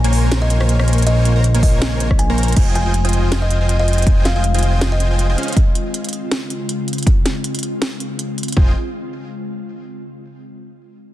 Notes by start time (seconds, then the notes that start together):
Already playing: A#1 C#3 G#3 A#3 F4
0.04 A#3 A#4 C5 C#5 G#5, closed hi-hat
0.13 open hi-hat
0.31 A#3 A#4 C5 C#5 G#5, snare, closed hi-hat
0.42 D#5
0.50 closed hi-hat
0.61 A#3 A#4 C5 C#5 G#5, cross-stick
0.69 closed hi-hat
0.79 A#3 A#4 C5 C#5 G#5, cross-stick
0.88 A#3 A#4 C5 C#5 G#5, closed hi-hat
0.93 closed hi-hat
0.98 closed hi-hat
1.02 closed hi-hat
1.07 A#3 A#4 C5 C#5 D#5 G#5, closed hi-hat
1.25 closed hi-hat
1.36 A#3 A#4 C5 C#5 A#5
1.44 closed hi-hat
1.54 A#3 A#4 C5 C#5 G#5, closed hi-hat
1.63 D#5, kick, open hi-hat
1.82 A#3 A#4 C5 C#5 G#5, snare, closed hi-hat
2.00 closed hi-hat
2.11 kick, cross-stick
2.19 G#5, closed hi-hat
2.30 A#3 A#4 C5 C#5 A#5
2.38 closed hi-hat
2.43 closed hi-hat
2.48 closed hi-hat
2.52 D#3 G#3 C4 F4, closed hi-hat
2.56 F1 F4 C5 D#5 G5, kick, closed hi-hat, crash
2.75 G#5, closed hi-hat
2.86 F4 C5 D#5 G5 G#5
2.94 closed hi-hat
3.05 F4 C5 D#5 G5 G#5, closed hi-hat
3.09 closed hi-hat
3.13 closed hi-hat
3.32 snare, closed hi-hat
3.42 D#5
3.51 closed hi-hat
3.61 F4 C5 D#5 G5 G#5
3.69 closed hi-hat
3.79 F4 C5 D#5 G5 G#5
3.88 F4 C5 D#5 G5 G#5, closed hi-hat
3.93 closed hi-hat
3.98 closed hi-hat
4.02 closed hi-hat
4.07 F4 C5 D#5 G5 G#5, kick, closed hi-hat
4.25 F5, snare, closed hi-hat
4.36 F4 C5 D#5 F5 G5 G#5
4.44 closed hi-hat
4.54 F4 C5 D#5 G5 G#5, closed hi-hat
4.59 closed hi-hat
4.63 closed hi-hat
4.81 F4 C5 D#5 G5, snare, closed hi-hat
4.92 D#5
5.00 closed hi-hat
5.11 F4 C5 D#5 G5 G#5
5.19 closed hi-hat
5.29 F4 C5 D#5 G5 G#5
5.38 C#3 G#3 C#4 G#4 C5 D#5 F5, closed hi-hat
5.43 closed hi-hat
5.48 closed hi-hat
5.53 kick, closed hi-hat
5.57 closed hi-hat
5.75 closed hi-hat
5.94 closed hi-hat
6.04 closed hi-hat
6.09 closed hi-hat
6.13 closed hi-hat
6.32 snare, closed hi-hat
6.50 closed hi-hat
6.69 closed hi-hat
6.88 closed hi-hat
6.93 closed hi-hat
6.98 closed hi-hat
7.03 kick, closed hi-hat
7.07 closed hi-hat
7.26 snare, closed hi-hat
7.44 closed hi-hat
7.55 closed hi-hat
7.59 closed hi-hat
7.63 closed hi-hat
7.82 snare, closed hi-hat
8.00 closed hi-hat
8.19 closed hi-hat
8.38 closed hi-hat
8.43 closed hi-hat
8.48 closed hi-hat
8.52 closed hi-hat
8.57 F1 F4 C5 D#5 G5 G#5, kick